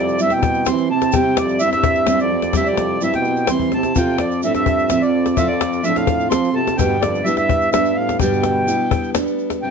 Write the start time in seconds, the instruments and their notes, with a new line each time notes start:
Already playing: french horn F2, steel-string acoustic guitar C3 G3 C4 E4 G4, felt piano G4, accordion D5
0.08 shaker
0.19 french horn G2, steel-string acoustic guitar G3 E4 G4, felt piano E4, accordion E5, shaker
0.30 accordion G5, cajon slap, shaker
0.34 french horn B2
0.43 cajon bass
0.54 shaker
0.66 french horn E3, steel-string acoustic guitar G3 C4 E4 G4, felt piano C4, accordion C6, cajon slap, shaker
0.78 shaker
0.89 french horn C3, steel-string acoustic guitar C4 E4 G4, accordion A5
1.01 cajon slap, shaker
1.12 steel-string acoustic guitar C3 G3 C4 E4 G4, french horn C3, felt piano G4, accordion G5, cajon bass, shaker
1.37 french horn F2, accordion D5, cajon slap
1.49 shaker
1.59 french horn G2, steel-string acoustic guitar G3 C4 E4 G4, felt piano E4, accordion E5, shaker
1.71 french horn G2, accordion E5, cajon slap, shaker
1.83 cajon bass
1.95 shaker
2.06 french horn G2, steel-string acoustic guitar G3 C4 E4 G4, felt piano C4, accordion E5, cajon slap, shaker
2.19 french horn F2, accordion D5, shaker
2.32 steel-string acoustic guitar C4
2.42 cajon slap, shaker
2.53 steel-string acoustic guitar C3 G3 C4 E4 G4, felt piano G4, accordion E5, cajon bass, cajon slap, shaker
2.57 french horn G2
2.66 french horn F2, accordion D5, shaker
2.77 cajon slap
3.01 french horn G2, steel-string acoustic guitar G3 C4 E4 G4, felt piano E4, accordion E5, cajon slap, shaker
3.14 french horn B2, accordion G5, cajon slap
3.25 steel-string acoustic guitar C4 E4 G4, shaker
3.36 cajon slap, shaker
3.47 french horn E3, steel-string acoustic guitar G3 C4 E4 G4, felt piano C4, accordion C6, cajon slap, shaker
3.59 cajon bass
3.72 french horn C3, steel-string acoustic guitar E4 G4, accordion A5, cajon slap
3.76 steel-string acoustic guitar C4
3.83 cajon slap, shaker
3.96 french horn C3, steel-string acoustic guitar F3 C4 F4 A4, felt piano F4, accordion G5, cajon bass, shaker
4.08 cajon slap
4.18 french horn F2, accordion D5, cajon slap
4.31 shaker
4.43 french horn A2, steel-string acoustic guitar F3 C4 F4 A4, felt piano D4, accordion E5, shaker
4.54 french horn G2, accordion E5, cajon slap, shaker
4.66 cajon bass
4.79 shaker
4.90 french horn A2, steel-string acoustic guitar F3 C4 F4 A4, felt piano C4, accordion E5, cajon slap, shaker
5.02 french horn F2, accordion D5, shaker
5.26 cajon slap, shaker
5.37 french horn A2, steel-string acoustic guitar F3 C4 F4 A4, felt piano F4, accordion E5, cajon bass, shaker
5.47 french horn F2, accordion D5
5.61 cajon slap
5.73 shaker
5.83 french horn A2, steel-string acoustic guitar F3 C4 F4 A4, felt piano D4, accordion E5, shaker
5.95 french horn A2, accordion F5, cajon slap, shaker
6.07 cajon bass
6.20 shaker
6.29 steel-string acoustic guitar F3 C4 F4 A4, french horn F3, felt piano C4, accordion C6, cajon slap, shaker
6.44 shaker
6.53 french horn C3, steel-string acoustic guitar C4 F4 A4, accordion A5
6.67 cajon slap, shaker
6.77 steel-string acoustic guitar G2 D3 G3 B3 D4 G4, french horn B2, felt piano G4, accordion G5, cajon bass, shaker
7.00 french horn F2, accordion D5, cajon slap
7.15 shaker
7.24 french horn G2, steel-string acoustic guitar G3 B3 D4 G4, felt piano E4, accordion E5, shaker
7.35 french horn G2, accordion E5, cajon slap, shaker
7.49 cajon bass
7.61 shaker
7.71 french horn G2, steel-string acoustic guitar G3 B3 D4, felt piano D4, accordion E5, cajon slap, shaker
7.76 steel-string acoustic guitar G4
7.85 shaker
7.95 french horn A2, accordion F5
8.09 cajon slap, shaker
8.19 steel-string acoustic guitar G2 D3 G3 B3 D4 G4, french horn B2, felt piano G4, accordion G5, cajon bass, shaker
8.34 shaker
8.43 cajon slap
8.56 cajon slap
8.67 steel-string acoustic guitar G3 B3 D4 G4, felt piano E4, shaker
8.91 cajon bass
9.04 shaker
9.15 steel-string acoustic guitar G3 B3 D4 G4, felt piano D4, cajon slap, shaker
9.27 shaker
9.39 shaker
9.50 cajon slap, shaker
9.62 steel-string acoustic guitar C3 G3 C4 E4 G4, accordion G5